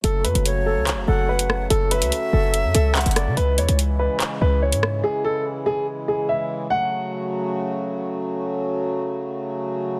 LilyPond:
<<
  \new Staff \with { instrumentName = "Flute" } { \time 4/4 \key fis \minor \tempo 4 = 144 r4 cis''4. fis''4. | r8 e''2. d''8 | r1 | r1 |
r1 | r1 | }
  \new Staff \with { instrumentName = "Grand piano" } { \time 4/4 \key fis \minor a'8 b'8 r8 a'8 r8 a'8 b'4 | a'8 b'8 r8 a'8 r8 a'8 fis''4 | b'8 cis''8 r8 b'8 r8 b'8 cis''4 | gis'8 a'8 r8 gis'8 r8 gis'8 e''4 |
fis''2. r4 | r1 | }
  \new Staff \with { instrumentName = "Harmonium" } { \clef bass \time 4/4 \key fis \minor << { <fis a fis'>1~ | <fis a fis'>1 | <e gis e'>1~ | <e gis e'>1 |
<cis fis a fis'>1~ | <cis fis a fis'>1 | } \\ { cis1~ | cis1~ | cis1~ | cis1 |
r1 | r1 | } >> }
  \new Staff \with { instrumentName = "808-style bass" } { \clef bass \time 4/4 \key fis \minor fis,,8 fis,16 fis,,4 cis,16. fis,,16. fis,,4. | fis,,8. cis,16 r8 fis,,8. fis,16 cis,8. fis,,8 cis16 | cis,8 e,16 cis,4 r8. cis,8. gis,8. | r1 |
r1 | r1 | }
  \new DrumStaff \with { instrumentName = "Drums" } \drummode { \time 4/4 hh8 hh16 hh16 hh4 <hc hh>4 r16 hh16 ss8 | hh8 hh16 hh16 hh4 hh8 hh8 <hc hh>32 hh32 hh32 hh32 <hh ss>8 | hh8 hh16 hh16 hh4 <hc hh>4 r16 hh16 ss8 | r4 r4 r4 r4 |
r4 r4 r4 r4 | r4 r4 r4 r4 | }
>>